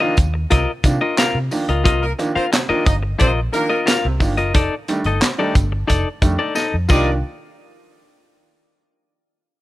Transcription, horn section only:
2.01 2.11 A#3 medium
2.01 2.12 A#4 medium
2.36 2.46 C4 medium
2.36 2.46 C5 medium
2.85 2.96 D#4 medium
2.85 2.96 D#5 medium
3.19 3.30 C4 medium
3.19 3.30 C5 loud
3.53 3.80 A#3 loud
3.53 3.80 A#4 loud
6.90 7.13 A#3 medium
6.90 7.13 G4 medium
6.90 7.14 D5 loud

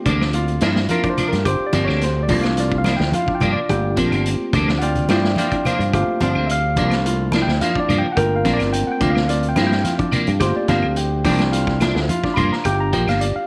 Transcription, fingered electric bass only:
0.06 0.58 D2 medium
0.62 0.87 G2 medium
1.18 muted fingered electric bass stroke soft
1.33 1.45 G2 medium
1.45 1.58 G1 medium
1.60 muted fingered electric bass stroke soft
1.73 1.86 G1 medium
1.89 2.30 D2 medium
2.29 2.95 C2 medium
3.00 3.12 D2 loud
3.28 muted fingered electric bass stroke soft
3.41 3.54 G2 medium
3.55 muted fingered electric bass stroke soft
3.70 3.95 G1 loud
3.97 4.10 A#1 medium
4.11 4.37 G1 loud
4.54 5.05 D2 medium
5.09 5.34 G2 medium
5.65 muted fingered electric bass stroke soft
5.79 5.91 G2 medium
5.93 6.06 G1 medium
6.21 6.34 G1 loud
6.35 6.79 D2 medium
6.77 7.43 C2 medium
7.47 7.59 D2 loud
7.75 muted fingered electric bass stroke soft
7.89 8.02 G2 medium
8.04 muted fingered electric bass stroke soft
8.17 8.42 G1 loud
8.45 8.58 A#1 medium
8.59 8.85 G1 medium
8.87 muted fingered electric bass stroke soft
9.01 9.53 D2 medium
9.57 9.82 G2 medium
10.13 muted fingered electric bass stroke soft
10.28 10.40 G2 medium
10.40 10.54 G1 medium
10.68 10.82 G1 loud
10.84 11.26 D2 medium
11.25 11.91 C2 medium
11.95 12.07 D2 loud
12.24 muted fingered electric bass stroke soft
12.37 12.50 G2 medium
12.50 muted fingered electric bass stroke soft
12.65 12.91 G1 loud
12.93 13.06 A#1 medium
13.07 13.33 G1 medium
13.36 muted fingered electric bass stroke soft

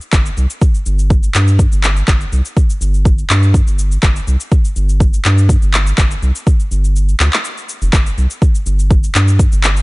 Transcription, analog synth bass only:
0.13 0.30 G1 medium
0.37 0.46 C2 medium
0.86 1.29 G1 loud
1.35 1.66 G2 medium
1.72 2.02 G1 medium
2.08 2.26 G1 loud
2.32 2.41 C2 medium
2.81 3.24 G1 loud
3.30 3.61 G2 loud
3.67 3.97 G1 medium
4.03 4.21 G1 medium
4.27 4.36 C2 medium
4.76 5.20 G1 loud
5.25 5.56 G2 loud
5.62 5.93 G1 medium
5.98 6.16 G1 medium
6.22 6.31 C2 medium
6.71 7.15 G1 loud
7.20 7.29 D2 loud
7.82 7.90 F1 loud
7.93 8.11 G1 medium
8.17 8.27 C2 medium
8.66 9.10 G1 loud
9.15 9.46 G2 medium
9.52 9.82 G1 medium

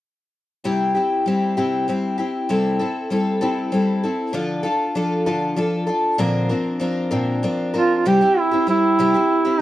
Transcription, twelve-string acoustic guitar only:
0.64 0.95 C3 medium
0.64 0.96 G3 medium
0.64 0.96 C4 medium
0.64 0.95 E4 medium
0.64 0.93 G4 medium
0.95 1.26 C4 soft
0.95 1.26 E4 soft
0.95 1.26 G4 soft
1.26 1.56 G3 soft
1.26 1.57 C4 soft
1.26 1.57 E4 soft
1.26 1.56 G4 medium
1.57 1.89 C3 soft
1.57 1.87 G3 soft
1.57 1.87 C4 soft
1.57 1.88 E4 soft
1.57 1.88 G4 soft
1.88 2.19 G3 soft
1.88 2.19 C4 medium
1.88 2.18 E4 medium
1.88 2.17 G4 medium
2.18 2.49 C4 soft
2.18 2.49 E4 soft
2.18 2.49 G4 soft
2.49 2.80 C3 medium
2.49 2.80 G3 medium
2.49 2.80 C4 medium
2.49 2.79 E4 medium
2.49 2.78 A4 medium
2.79 3.10 C4 soft
2.79 3.11 E4 soft
2.79 3.11 A4 soft
3.10 3.42 G3 soft
3.10 3.41 C4 soft
3.10 3.41 E4 medium
3.10 3.40 A4 medium
3.41 3.73 C3 soft
3.41 3.71 G3 soft
3.41 3.71 C4 soft
3.41 3.73 E4 soft
3.41 3.73 A4 medium
3.72 4.03 G3 soft
3.72 4.04 C4 medium
3.72 4.03 E4 soft
3.72 4.02 A4 soft
4.03 4.34 C4 soft
4.03 4.34 E4 soft
4.03 4.33 A4 soft
4.33 4.65 D3 medium
4.33 4.65 F3 medium
4.33 4.64 D4 medium
4.33 4.63 F4 medium
4.33 4.62 A4 medium
4.63 4.94 D4 soft
4.63 4.95 F4 soft
4.63 4.95 A4 soft
4.95 5.26 F3 soft
4.95 5.25 D4 medium
4.95 5.25 F4 medium
4.95 5.25 A4 medium
5.26 5.59 D3 soft
5.26 5.55 F3 soft
5.26 5.56 D4 soft
5.26 5.56 F4 medium
5.26 5.57 A4 medium
5.56 5.88 F3 medium
5.56 5.88 D4 medium
5.56 5.86 F4 soft
5.56 5.85 A4 medium
5.87 6.18 D4 soft
5.87 6.19 F4 soft
5.87 6.19 A4 soft
6.18 6.50 A#2 medium
6.18 6.50 D3 medium
6.18 6.50 F3 medium
6.18 6.50 C4 medium
6.18 6.49 D4 medium
6.18 6.48 A#4 medium
6.49 6.78 F3 soft
6.49 6.80 C4 soft
6.49 6.80 D4 soft
6.49 6.81 A#4 soft
6.80 7.10 F3 medium
6.80 7.10 C4 medium
6.80 7.10 D4 medium
6.80 7.10 A#4 medium
7.11 7.44 A#2 soft
7.11 7.43 D3 soft
7.11 7.42 F3 soft
7.11 7.43 C4 medium
7.11 7.43 D4 medium
7.11 7.43 A#4 medium
7.43 7.74 F3 medium
7.43 7.74 C4 soft
7.43 7.73 D4 medium
7.43 7.73 A#4 medium
7.74 8.05 F3 soft
7.74 8.05 C4 soft
7.74 8.05 D4 soft
7.74 8.05 A#4 soft
8.05 8.21 C3 medium
8.05 8.21 G3 medium
8.05 8.21 C4 medium
8.05 8.21 E4 medium
8.05 8.20 G4 medium
8.21 8.53 C4 soft
8.21 8.52 E4 soft
8.21 8.50 G4 soft
8.51 8.67 C4 soft
8.51 8.67 E4 soft
8.51 8.67 G4 soft
8.67 8.98 G3 soft
8.67 8.98 C4 soft
8.67 8.98 E4 medium
8.67 8.99 G4 soft
8.99 9.14 C3 medium
8.99 9.14 G3 medium
8.99 9.14 C4 medium
8.99 9.14 E4 medium
8.99 9.13 G4 medium
9.14 9.45 C4 soft
9.14 9.44 E4 soft
9.14 9.44 G4 soft
9.45 9.59 C4 soft
9.45 9.60 E4 soft
9.45 9.60 G4 soft

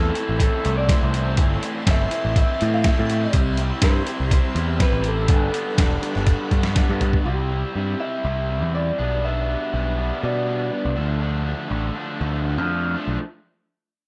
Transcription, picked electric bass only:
0.29 0.47 A1 medium
0.66 0.93 C2 loud
1.03 1.39 C2 loud
1.38 1.56 G1 loud
1.87 2.06 G1 medium
2.25 2.43 A1 medium
2.62 2.89 A2 medium
2.99 3.26 A2 loud
3.34 3.71 C2 loud
3.83 4.01 G2 loud
4.20 4.38 C2 medium
4.55 4.83 E2 medium
4.92 5.31 A1 loud
5.29 5.48 G1 loud
5.79 5.97 E1 loud
6.16 6.34 G1 medium
6.52 6.79 G2 medium
6.89 7.17 G2 loud
7.26 7.63 C2 loud
7.75 7.94 G2 medium
8.25 8.62 C2 loud
8.62 8.90 E2 medium
8.99 9.55 B1 medium
9.74 10.11 B1 medium
10.23 10.69 B2 loud
10.85 10.94 C2 medium
10.97 11.53 D2 medium
11.71 11.89 A1 medium
12.21 12.58 D2 loud
12.58 12.95 F2 medium
13.07 13.16 B1 medium

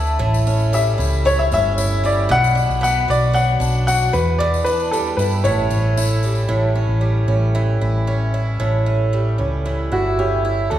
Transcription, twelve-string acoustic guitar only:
0.00 0.20 D3 medium
0.00 0.72 A3 medium
0.00 0.25 D4 medium
0.00 0.98 E4 medium
0.19 2.29 A2 medium
0.47 1.51 C#4 medium
0.73 2.02 G3 medium
0.98 1.77 E4 medium
1.25 2.35 E3 medium
1.52 2.36 C#4 medium
1.78 2.35 E4 medium
2.04 2.35 G3 medium
2.29 4.18 B2 medium
2.55 3.59 D4 medium
2.81 4.18 B3 medium
3.08 3.87 F#4 medium
3.33 4.18 F#3 medium
3.60 4.18 D4 medium
3.88 4.19 F#4 medium
4.13 4.39 E2 medium
4.40 5.45 E2 loud
4.66 5.50 D4 medium
4.93 5.74 G3 medium
5.19 5.97 E4 medium
5.45 6.47 A2 medium
5.71 6.75 C#4 medium
5.98 7.81 E4 medium
6.24 6.78 G3 medium
6.49 8.58 A2 medium
6.75 7.27 C#4 medium
7.01 9.12 G3 medium
7.28 8.07 C#4 soft
7.55 9.64 E3 medium
7.81 8.33 E4 medium
8.07 8.86 C#4 medium
8.34 9.90 E4 medium
8.60 10.71 A2 medium
8.86 9.38 C#4 medium
9.13 10.76 G3 medium
9.38 10.18 C#4 soft
9.65 10.71 E3 medium
9.92 10.43 E4 medium
10.19 10.79 C#4 medium
10.45 10.71 E4 medium
10.71 10.79 D3 medium
10.71 10.79 F#4 medium

